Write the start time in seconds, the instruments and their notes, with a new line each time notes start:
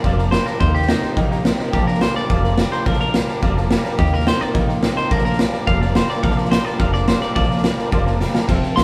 Already playing: clean electric guitar D5
0.04 upright bass F1, clean electric guitar A#2 F3, steel-string acoustic guitar A#2 D3 F3 A#3 D4 A#4, honky-tonk piano D5 F5 A#5, kick, snare
0.18 steel-string acoustic guitar F3 A#3 D4 A#4, honky-tonk piano D5 F5 A#5, snare
0.31 clean electric guitar A#2 G3 C5, steel-string acoustic guitar F3 A#3 D4 A#4, honky-tonk piano D5 F5 A#5, snare, hi-hat pedal
0.46 steel-string acoustic guitar F3 A#3 D4 A#4, clean electric guitar A#4, honky-tonk piano D5 F5 A#5, muted upright bass stroke, snare
0.60 upright bass D#2, steel-string acoustic guitar D#3 G3 A#3 D#4 G4, clean electric guitar D#3 A#3 C5, honky-tonk piano D#5 G5 A#5, kick, snare
0.74 steel-string acoustic guitar A#3 D#4 G4, clean electric guitar G4, honky-tonk piano D#5 G5 C6, snare
0.82 snare
0.88 clean electric guitar D#3 C4 D#4, steel-string acoustic guitar G3 A#3 D#4 G4, honky-tonk piano D#5 G5 A#5, snare, hi-hat pedal
1.02 steel-string acoustic guitar A#3 D#4 G4, honky-tonk piano D#5 G5 C6, muted upright bass stroke, snare
1.16 upright bass A#1, steel-string acoustic guitar D#3 G3 A#3 D#4 G4, clean electric guitar D#3 A#3, honky-tonk piano D#5 G5 A#5, kick, snare
1.29 steel-string acoustic guitar A#3 D#4 G4, honky-tonk piano D#5 G5 A#5, snare
1.43 clean electric guitar D#3 C4, steel-string acoustic guitar G3 A#3 D#4 G4, honky-tonk piano D#5 G5 C6, snare, hi-hat pedal
1.58 steel-string acoustic guitar A#3 D#4 G4, honky-tonk piano D#5 G5 A#5, muted upright bass stroke, snare
1.72 upright bass A#1, steel-string acoustic guitar A#2 D3 F3 A#3 D4 A#4, clean electric guitar A#2 F3 G4, honky-tonk piano D5 F5 A#5, kick, snare
1.86 steel-string acoustic guitar F3 A#3 D4 A#4, clean electric guitar A#4, honky-tonk piano D5 F5 A#5, snare
1.94 snare
2.00 clean electric guitar A#2 G3 C5, steel-string acoustic guitar F3 A#3 D4 A#4, honky-tonk piano D5 F5 A#5, snare, hi-hat pedal
2.15 steel-string acoustic guitar F3 A#3 D4 A#4, honky-tonk piano D5 F5 A#5, clean electric guitar D5, muted upright bass stroke, snare
2.28 upright bass F1, steel-string acoustic guitar A#2 D3 F3 A#3 D4 A#4, clean electric guitar A#2 F3, honky-tonk piano D5 F5 A#5, kick, snare
2.43 steel-string acoustic guitar F3 A#3 D4 A#4, honky-tonk piano D5 F5 A#5, snare
2.57 clean electric guitar A#2 G3, steel-string acoustic guitar F3 A#3 D4 A#4, honky-tonk piano D5 F5 A#5, snare, hi-hat pedal
2.71 steel-string acoustic guitar F3 A#3 D4 A#4, clean electric guitar C5, honky-tonk piano D5 F5 A#5, muted upright bass stroke, snare
2.85 upright bass A#1, steel-string acoustic guitar A#2 D3 F3 A#3 D4 A#4, clean electric guitar A#2 F3 A#4, honky-tonk piano D5 F5 A#5, kick, snare
2.93 snare
3.00 steel-string acoustic guitar F3 A#3 D4 A#4, clean electric guitar A#4, honky-tonk piano D5 F5 A#5, snare
3.14 clean electric guitar A#2 G3, steel-string acoustic guitar F3 A#3 D4 A#4, honky-tonk piano D5 F5 A#5, snare, hi-hat pedal
3.27 steel-string acoustic guitar F3 A#3 D4 A#4, honky-tonk piano D5 F5 A#5, snare
3.42 upright bass F1, steel-string acoustic guitar A#2 D3 F3 A#3 D4 A#4, clean electric guitar A#2 F3, honky-tonk piano D5 F5 A#5, kick, snare
3.56 steel-string acoustic guitar F3 A#3 D4 A#4, honky-tonk piano D5 F5 A#5, snare
3.69 clean electric guitar A#2 G3, steel-string acoustic guitar F3 A#3 D4 A#4, honky-tonk piano D5 F5 A#5, snare, hi-hat pedal
3.83 steel-string acoustic guitar F3 A#3 D4 A#4, honky-tonk piano D5 F5 A#5, muted upright bass stroke, snare
3.97 upright bass D#2, steel-string acoustic guitar D#3 G3 A#3 D#4 A#4, clean electric guitar D#3 A#3 G4, honky-tonk piano D#5 G5 A#5, kick, snare
4.06 snare
4.11 steel-string acoustic guitar A#3 D#4 A#4, clean electric guitar A#4, honky-tonk piano D#5 G5 A#5, snare
4.20 snare
4.25 clean electric guitar D#3 C4 C5, steel-string acoustic guitar G3 A#3 D#4 A#4, honky-tonk piano D#5 G5 A#5, snare, hi-hat pedal
4.39 steel-string acoustic guitar A#3 D#4 A#4, clean electric guitar D5, honky-tonk piano D#5 G5 A#5, muted upright bass stroke, snare
4.54 upright bass A#1, steel-string acoustic guitar D#3 G3 A#3 D#4 A#4, clean electric guitar D#3 A#3, honky-tonk piano D#5 G5 A#5, kick, snare
4.68 steel-string acoustic guitar A#3 D#4 A#4, honky-tonk piano D#5 G5 A#5, snare
4.82 clean electric guitar D#3 C4, steel-string acoustic guitar G3 A#3 D#4 A#4, honky-tonk piano D#5 G5 A#5, snare, hi-hat pedal
4.96 steel-string acoustic guitar A#3 D#4 A#4, clean electric guitar C5, honky-tonk piano D#5 G5 A#5, muted upright bass stroke, snare
5.10 upright bass A#1, steel-string acoustic guitar A#2 D3 F3 A#3 D4 A#4, clean electric guitar A#2 F3 A#4, honky-tonk piano D5 F5 A#5, kick, snare
5.18 snare
5.24 steel-string acoustic guitar F3 A#3 D4 A#4, clean electric guitar A#4, honky-tonk piano D5 F5 A#5, snare
5.33 snare
5.38 clean electric guitar A#2 G3, steel-string acoustic guitar F3 A#3 D4 A#4, honky-tonk piano D5 F5 A#5, snare, hi-hat pedal
5.53 steel-string acoustic guitar F3 A#3 D4 A#4, honky-tonk piano D5 F5 A#5, muted upright bass stroke, snare
5.67 upright bass F1, steel-string acoustic guitar A#2 D3 F3 A#3 D4 A#4, clean electric guitar A#2 F3 F5, honky-tonk piano D5 F5 A#5, kick, snare
5.81 steel-string acoustic guitar F3 A#3 D4 A#4, honky-tonk piano D5 F5 A#5, clean electric guitar D5, snare
5.94 clean electric guitar A#2 G3 C5, steel-string acoustic guitar F3 A#3 D4 A#4, honky-tonk piano D5 F5 A#5, snare, hi-hat pedal
6.08 steel-string acoustic guitar F3 A#3 D4 A#4, honky-tonk piano D5 F5 A#5, clean electric guitar D5, muted upright bass stroke, snare
6.22 upright bass A#1, steel-string acoustic guitar A#2 D3 F3 A#3 D4 A#4, clean electric guitar A#2 F3 F5, honky-tonk piano D5 F5 A#5, kick, snare
6.31 snare
6.37 steel-string acoustic guitar F3 A#3 D4 A#4, honky-tonk piano D5 F5 A#5, clean electric guitar D5, snare
6.45 snare
6.51 clean electric guitar A#2 G3 C5, steel-string acoustic guitar F3 A#3 D4 A#4, honky-tonk piano D5 F5 A#5, snare, hi-hat pedal
6.64 steel-string acoustic guitar F3 A#3 D4 A#4, honky-tonk piano D5 F5 A#5, clean electric guitar D5, snare
6.78 upright bass F1, steel-string acoustic guitar A#2 D3 F3 A#3 D4 A#4, clean electric guitar A#2 F3 F5, honky-tonk piano D5 F5 A#5, kick, snare
6.92 steel-string acoustic guitar F3 A#3 D4 A#4, honky-tonk piano D5 F5 A#5, clean electric guitar D5, snare
7.07 clean electric guitar A#2 G3 C5, steel-string acoustic guitar F3 A#3 D4 A#4, honky-tonk piano D5 F5 A#5, snare, hi-hat pedal
7.21 steel-string acoustic guitar F3 A#3 D4 A#4, honky-tonk piano D5 F5 A#5, clean electric guitar D5, muted upright bass stroke, snare
7.35 upright bass A#1, steel-string acoustic guitar A#2 D3 F3 A#3 D4 A#4, clean electric guitar A#2 F3 D5, honky-tonk piano D5 F5 A#5, kick, snare
7.43 snare
7.49 steel-string acoustic guitar F3 A#3 D4 A#4, honky-tonk piano D5 F5 A#5, snare
7.57 snare
7.63 clean electric guitar A#2 G3, steel-string acoustic guitar F3 A#3 D4 A#4, honky-tonk piano D5 F5 A#5, snare, hi-hat pedal
7.77 steel-string acoustic guitar F3 A#3 D4 A#4, honky-tonk piano D5 F5 A#5, muted upright bass stroke, snare
7.92 upright bass F1, steel-string acoustic guitar A#2 D3 F3 A#3 D4 A#4, clean electric guitar A#2 F3, honky-tonk piano D5 F5 C6, kick, snare
8.06 steel-string acoustic guitar F3 A#3 D4 A#4, honky-tonk piano D5 F5 A#5, snare
8.20 clean electric guitar A#2 G3, steel-string acoustic guitar F3 A#3 D4 A#4, honky-tonk piano D5 F5 A#5, snare, hi-hat pedal
8.34 steel-string acoustic guitar F3 A#3 D4 A#4, honky-tonk piano D5 F5 A#5, muted upright bass stroke, snare
8.48 upright bass F1, clean electric guitar F2 C3, steel-string acoustic guitar F3 C4 F4 A4, honky-tonk piano C5 F5 A5, kick, snare, crash
8.62 steel-string acoustic guitar C4 F4 A4, honky-tonk piano C5 F5 A5, muted upright bass stroke, snare
8.76 upright bass A#1, clean electric guitar F2 D3 C6, steel-string acoustic guitar F3 C4 F4 A4, honky-tonk piano C5 F5 A5, snare, hi-hat pedal